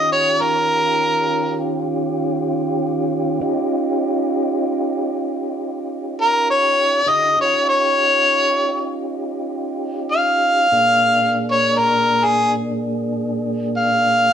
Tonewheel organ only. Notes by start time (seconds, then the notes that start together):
Already playing: D#3 C#4 F4 G4
3.41 C#4 D#4 F4 G4
7.06 D3 E4 F#4 G#4
7.39 C#4 D#4 F4 G4
10.72 A#2 A#3 D4 G#4